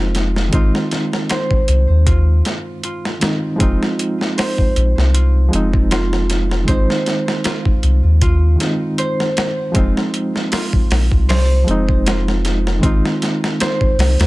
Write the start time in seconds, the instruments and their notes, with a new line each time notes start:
Already playing: sub bass F1, reed electric piano F3 G#3 C4 D#4, harp F4 C5
0.15 snare, closed hi-hat
0.36 snare
0.49 reed electric piano D#3 G#3, closed hi-hat
0.53 sub bass G#1, reed electric piano C4 D#4, harp F4, kick
0.75 snare
0.91 snare, closed hi-hat
1.13 snare
1.29 harp C5, snare, closed hi-hat
1.51 kick
1.68 sub bass C2, closed hi-hat
1.89 sub bass D#2
2.07 harp F4, kick, closed hi-hat
2.45 snare, closed hi-hat
2.84 harp F4, closed hi-hat
3.05 snare
3.20 reed electric piano D#3 G#3 C4 D#4, snare, closed hi-hat
3.56 sub bass F1, reed electric piano F3 G#3
3.60 reed electric piano C4 D#4, harp F4, kick, closed hi-hat
3.83 snare
3.99 closed hi-hat
4.21 snare
4.38 harp C5, snare, open hi-hat
4.58 kick
4.76 sub bass A#1, closed hi-hat
4.97 sub bass C2, snare
5.14 harp F4, closed hi-hat
5.49 reed electric piano F3 G#3
5.53 sub bass F1, reed electric piano C4 D#4, closed hi-hat
5.74 kick
5.91 harp F4, snare, closed hi-hat
6.13 snare
6.30 snare, closed hi-hat
6.51 snare
6.64 sub bass G#1, reed electric piano D#3 G#3, harp C5, kick
6.68 reed electric piano C4 D#4, closed hi-hat
6.90 snare
7.06 snare, closed hi-hat
7.28 snare
7.44 harp F4, snare, closed hi-hat
7.65 kick
7.83 sub bass C2, closed hi-hat
8.03 sub bass D#2
8.21 harp F4, kick, closed hi-hat
8.56 reed electric piano D#3 G#3
8.60 reed electric piano C4 D#4, snare, closed hi-hat
8.98 harp C5, closed hi-hat
9.20 snare
9.37 snare, closed hi-hat
9.72 sub bass F1, reed electric piano F3 G#3, harp F4, kick, closed hi-hat
9.76 reed electric piano C4 D#4
9.97 snare
10.14 closed hi-hat
10.36 snare
10.52 harp F4, snare, open hi-hat
10.73 kick
10.91 sub bass A#1, snare, open hi-hat
11.11 sub bass C2, kick
11.29 harp C5, snare, open hi-hat
11.64 sub bass F1, reed electric piano F3 G#3, closed hi-hat
11.69 reed electric piano C4 D#4
11.89 kick
12.06 harp F4, snare, closed hi-hat
12.28 snare
12.45 snare, closed hi-hat
12.67 snare
12.79 reed electric piano D#3 G#3, harp F4
12.83 sub bass G#1, reed electric piano C4 D#4, kick, closed hi-hat
13.05 snare
13.22 snare, closed hi-hat
13.44 snare
13.60 harp C5, snare, closed hi-hat
13.81 kick
13.97 sub bass C2, snare, open hi-hat
14.19 sub bass D#2, snare, open hi-hat